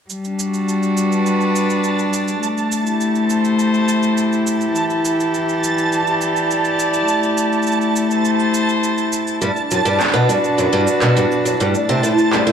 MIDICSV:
0, 0, Header, 1, 5, 480
1, 0, Start_track
1, 0, Tempo, 582524
1, 80, Time_signature, 4, 2, 24, 8
1, 10316, End_track
2, 0, Start_track
2, 0, Title_t, "Synth texture"
2, 0, Program_c, 0, 99
2, 66, Note_on_c, 0, 81, 77
2, 10316, Note_off_c, 0, 81, 0
2, 10316, End_track
3, 0, Start_track
3, 0, Title_t, "String quartet"
3, 0, Program_c, 1, 48
3, 80, Note_on_c, 1, 55, 76
3, 228, Note_on_c, 1, 62, 66
3, 402, Note_on_c, 1, 66, 59
3, 883, Note_on_c, 1, 71, 58
3, 1996, Note_on_c, 1, 57, 66
3, 1998, Note_off_c, 1, 71, 0
3, 2000, Note_off_c, 1, 55, 0
3, 2000, Note_off_c, 1, 66, 0
3, 2331, Note_on_c, 1, 64, 71
3, 2372, Note_on_c, 1, 67, 61
3, 2679, Note_on_c, 1, 72, 66
3, 2765, Note_off_c, 1, 62, 0
3, 3912, Note_on_c, 1, 52, 56
3, 3915, Note_off_c, 1, 72, 0
3, 3918, Note_off_c, 1, 57, 0
3, 4774, Note_on_c, 1, 74, 60
3, 5826, Note_on_c, 1, 57, 57
3, 5836, Note_off_c, 1, 52, 0
3, 6603, Note_off_c, 1, 74, 0
3, 6694, Note_on_c, 1, 72, 71
3, 7753, Note_off_c, 1, 57, 0
3, 7755, Note_off_c, 1, 72, 0
3, 7761, Note_off_c, 1, 67, 0
3, 7943, Note_on_c, 1, 62, 76
3, 8362, Note_on_c, 1, 66, 72
3, 8415, Note_on_c, 1, 71, 66
3, 8529, Note_off_c, 1, 64, 0
3, 9670, Note_on_c, 1, 57, 64
3, 9677, Note_off_c, 1, 66, 0
3, 9680, Note_off_c, 1, 71, 0
3, 9720, Note_on_c, 1, 64, 64
3, 9828, Note_on_c, 1, 72, 80
3, 10139, Note_on_c, 1, 67, 72
3, 10316, Note_off_c, 1, 57, 0
3, 10316, Note_off_c, 1, 62, 0
3, 10316, Note_off_c, 1, 64, 0
3, 10316, Note_off_c, 1, 67, 0
3, 10316, Note_off_c, 1, 72, 0
3, 10316, End_track
4, 0, Start_track
4, 0, Title_t, "Twelve-string acoustic guitar"
4, 0, Program_c, 2, 25
4, 7758, Note_on_c, 2, 43, 63
4, 7828, Note_off_c, 2, 43, 0
4, 8005, Note_on_c, 2, 42, 61
4, 8071, Note_off_c, 2, 42, 0
4, 8119, Note_on_c, 2, 43, 74
4, 8233, Note_off_c, 2, 43, 0
4, 8352, Note_on_c, 2, 47, 89
4, 8470, Note_off_c, 2, 47, 0
4, 8480, Note_on_c, 2, 43, 67
4, 8548, Note_off_c, 2, 43, 0
4, 8720, Note_on_c, 2, 42, 66
4, 8788, Note_off_c, 2, 42, 0
4, 8839, Note_on_c, 2, 43, 83
4, 8953, Note_off_c, 2, 43, 0
4, 9077, Note_on_c, 2, 47, 82
4, 9193, Note_off_c, 2, 47, 0
4, 9200, Note_on_c, 2, 43, 77
4, 9268, Note_off_c, 2, 43, 0
4, 9438, Note_on_c, 2, 42, 63
4, 9507, Note_off_c, 2, 42, 0
4, 9561, Note_on_c, 2, 43, 82
4, 9674, Note_off_c, 2, 43, 0
4, 9797, Note_on_c, 2, 48, 89
4, 9911, Note_off_c, 2, 48, 0
4, 9914, Note_on_c, 2, 45, 61
4, 9985, Note_off_c, 2, 45, 0
4, 10162, Note_on_c, 2, 43, 72
4, 10229, Note_off_c, 2, 43, 0
4, 10273, Note_on_c, 2, 45, 83
4, 10316, Note_off_c, 2, 45, 0
4, 10316, End_track
5, 0, Start_track
5, 0, Title_t, "Drums"
5, 82, Note_on_c, 9, 69, 35
5, 164, Note_off_c, 9, 69, 0
5, 203, Note_on_c, 9, 69, 18
5, 285, Note_off_c, 9, 69, 0
5, 325, Note_on_c, 9, 69, 63
5, 408, Note_off_c, 9, 69, 0
5, 445, Note_on_c, 9, 69, 29
5, 527, Note_off_c, 9, 69, 0
5, 566, Note_on_c, 9, 69, 35
5, 648, Note_off_c, 9, 69, 0
5, 684, Note_on_c, 9, 69, 18
5, 766, Note_off_c, 9, 69, 0
5, 802, Note_on_c, 9, 69, 63
5, 884, Note_off_c, 9, 69, 0
5, 924, Note_on_c, 9, 69, 26
5, 1007, Note_off_c, 9, 69, 0
5, 1041, Note_on_c, 9, 69, 36
5, 1123, Note_off_c, 9, 69, 0
5, 1161, Note_on_c, 9, 69, 17
5, 1243, Note_off_c, 9, 69, 0
5, 1283, Note_on_c, 9, 69, 62
5, 1365, Note_off_c, 9, 69, 0
5, 1400, Note_on_c, 9, 69, 27
5, 1482, Note_off_c, 9, 69, 0
5, 1516, Note_on_c, 9, 69, 36
5, 1598, Note_off_c, 9, 69, 0
5, 1638, Note_on_c, 9, 69, 20
5, 1720, Note_off_c, 9, 69, 0
5, 1758, Note_on_c, 9, 69, 62
5, 1840, Note_off_c, 9, 69, 0
5, 1878, Note_on_c, 9, 69, 29
5, 1961, Note_off_c, 9, 69, 0
5, 2003, Note_on_c, 9, 69, 39
5, 2085, Note_off_c, 9, 69, 0
5, 2123, Note_on_c, 9, 69, 21
5, 2205, Note_off_c, 9, 69, 0
5, 2239, Note_on_c, 9, 69, 73
5, 2322, Note_off_c, 9, 69, 0
5, 2360, Note_on_c, 9, 69, 27
5, 2443, Note_off_c, 9, 69, 0
5, 2478, Note_on_c, 9, 69, 34
5, 2560, Note_off_c, 9, 69, 0
5, 2597, Note_on_c, 9, 69, 19
5, 2679, Note_off_c, 9, 69, 0
5, 2716, Note_on_c, 9, 69, 66
5, 2799, Note_off_c, 9, 69, 0
5, 2838, Note_on_c, 9, 69, 28
5, 2921, Note_off_c, 9, 69, 0
5, 2959, Note_on_c, 9, 69, 38
5, 3041, Note_off_c, 9, 69, 0
5, 3082, Note_on_c, 9, 69, 17
5, 3165, Note_off_c, 9, 69, 0
5, 3200, Note_on_c, 9, 69, 67
5, 3282, Note_off_c, 9, 69, 0
5, 3319, Note_on_c, 9, 69, 29
5, 3401, Note_off_c, 9, 69, 0
5, 3440, Note_on_c, 9, 69, 39
5, 3523, Note_off_c, 9, 69, 0
5, 3566, Note_on_c, 9, 69, 19
5, 3648, Note_off_c, 9, 69, 0
5, 3682, Note_on_c, 9, 69, 71
5, 3764, Note_off_c, 9, 69, 0
5, 3799, Note_on_c, 9, 69, 31
5, 3882, Note_off_c, 9, 69, 0
5, 3918, Note_on_c, 9, 69, 38
5, 4000, Note_off_c, 9, 69, 0
5, 4038, Note_on_c, 9, 69, 19
5, 4120, Note_off_c, 9, 69, 0
5, 4162, Note_on_c, 9, 69, 70
5, 4244, Note_off_c, 9, 69, 0
5, 4287, Note_on_c, 9, 69, 32
5, 4369, Note_off_c, 9, 69, 0
5, 4403, Note_on_c, 9, 69, 35
5, 4486, Note_off_c, 9, 69, 0
5, 4524, Note_on_c, 9, 69, 20
5, 4606, Note_off_c, 9, 69, 0
5, 4646, Note_on_c, 9, 69, 66
5, 4728, Note_off_c, 9, 69, 0
5, 4764, Note_on_c, 9, 69, 31
5, 4846, Note_off_c, 9, 69, 0
5, 4882, Note_on_c, 9, 69, 38
5, 4964, Note_off_c, 9, 69, 0
5, 5002, Note_on_c, 9, 69, 19
5, 5084, Note_off_c, 9, 69, 0
5, 5120, Note_on_c, 9, 69, 70
5, 5202, Note_off_c, 9, 69, 0
5, 5244, Note_on_c, 9, 69, 31
5, 5327, Note_off_c, 9, 69, 0
5, 5363, Note_on_c, 9, 69, 39
5, 5445, Note_off_c, 9, 69, 0
5, 5477, Note_on_c, 9, 69, 20
5, 5559, Note_off_c, 9, 69, 0
5, 5599, Note_on_c, 9, 69, 64
5, 5682, Note_off_c, 9, 69, 0
5, 5717, Note_on_c, 9, 69, 31
5, 5799, Note_off_c, 9, 69, 0
5, 5835, Note_on_c, 9, 69, 39
5, 5918, Note_off_c, 9, 69, 0
5, 5959, Note_on_c, 9, 69, 19
5, 6042, Note_off_c, 9, 69, 0
5, 6079, Note_on_c, 9, 69, 67
5, 6161, Note_off_c, 9, 69, 0
5, 6201, Note_on_c, 9, 69, 13
5, 6283, Note_off_c, 9, 69, 0
5, 6283, Note_on_c, 9, 69, 19
5, 6319, Note_off_c, 9, 69, 0
5, 6319, Note_on_c, 9, 69, 36
5, 6360, Note_off_c, 9, 69, 0
5, 6360, Note_on_c, 9, 69, 20
5, 6439, Note_off_c, 9, 69, 0
5, 6439, Note_on_c, 9, 69, 19
5, 6522, Note_off_c, 9, 69, 0
5, 6559, Note_on_c, 9, 69, 65
5, 6641, Note_off_c, 9, 69, 0
5, 6681, Note_on_c, 9, 69, 28
5, 6763, Note_off_c, 9, 69, 0
5, 6797, Note_on_c, 9, 69, 36
5, 6879, Note_off_c, 9, 69, 0
5, 6919, Note_on_c, 9, 69, 17
5, 7001, Note_off_c, 9, 69, 0
5, 7039, Note_on_c, 9, 69, 69
5, 7121, Note_off_c, 9, 69, 0
5, 7162, Note_on_c, 9, 69, 28
5, 7244, Note_off_c, 9, 69, 0
5, 7281, Note_on_c, 9, 69, 41
5, 7363, Note_off_c, 9, 69, 0
5, 7399, Note_on_c, 9, 69, 20
5, 7481, Note_off_c, 9, 69, 0
5, 7520, Note_on_c, 9, 69, 66
5, 7602, Note_off_c, 9, 69, 0
5, 7641, Note_on_c, 9, 69, 27
5, 7724, Note_off_c, 9, 69, 0
5, 7759, Note_on_c, 9, 69, 37
5, 7841, Note_off_c, 9, 69, 0
5, 7881, Note_on_c, 9, 69, 18
5, 7964, Note_off_c, 9, 69, 0
5, 8001, Note_on_c, 9, 69, 65
5, 8084, Note_off_c, 9, 69, 0
5, 8123, Note_on_c, 9, 69, 28
5, 8205, Note_off_c, 9, 69, 0
5, 8241, Note_on_c, 9, 39, 57
5, 8244, Note_on_c, 9, 69, 38
5, 8266, Note_off_c, 9, 39, 0
5, 8266, Note_on_c, 9, 39, 47
5, 8297, Note_off_c, 9, 39, 0
5, 8297, Note_on_c, 9, 39, 39
5, 8327, Note_off_c, 9, 39, 0
5, 8327, Note_off_c, 9, 69, 0
5, 8327, Note_on_c, 9, 39, 32
5, 8363, Note_on_c, 9, 69, 18
5, 8410, Note_off_c, 9, 39, 0
5, 8445, Note_off_c, 9, 69, 0
5, 8483, Note_on_c, 9, 69, 67
5, 8566, Note_off_c, 9, 69, 0
5, 8605, Note_on_c, 9, 69, 27
5, 8687, Note_off_c, 9, 69, 0
5, 8724, Note_on_c, 9, 69, 39
5, 8807, Note_off_c, 9, 69, 0
5, 8839, Note_on_c, 9, 69, 16
5, 8922, Note_off_c, 9, 69, 0
5, 8959, Note_on_c, 9, 69, 68
5, 9041, Note_off_c, 9, 69, 0
5, 9079, Note_on_c, 9, 39, 67
5, 9083, Note_on_c, 9, 69, 29
5, 9162, Note_off_c, 9, 39, 0
5, 9165, Note_off_c, 9, 69, 0
5, 9204, Note_on_c, 9, 69, 42
5, 9287, Note_off_c, 9, 69, 0
5, 9325, Note_on_c, 9, 69, 21
5, 9407, Note_off_c, 9, 69, 0
5, 9443, Note_on_c, 9, 69, 65
5, 9525, Note_off_c, 9, 69, 0
5, 9562, Note_on_c, 9, 69, 29
5, 9645, Note_off_c, 9, 69, 0
5, 9678, Note_on_c, 9, 69, 37
5, 9761, Note_off_c, 9, 69, 0
5, 9802, Note_on_c, 9, 69, 20
5, 9884, Note_off_c, 9, 69, 0
5, 9919, Note_on_c, 9, 69, 68
5, 10002, Note_off_c, 9, 69, 0
5, 10039, Note_on_c, 9, 69, 29
5, 10121, Note_off_c, 9, 69, 0
5, 10159, Note_on_c, 9, 39, 66
5, 10162, Note_on_c, 9, 69, 36
5, 10241, Note_off_c, 9, 39, 0
5, 10245, Note_off_c, 9, 69, 0
5, 10281, Note_on_c, 9, 69, 19
5, 10316, Note_off_c, 9, 69, 0
5, 10316, End_track
0, 0, End_of_file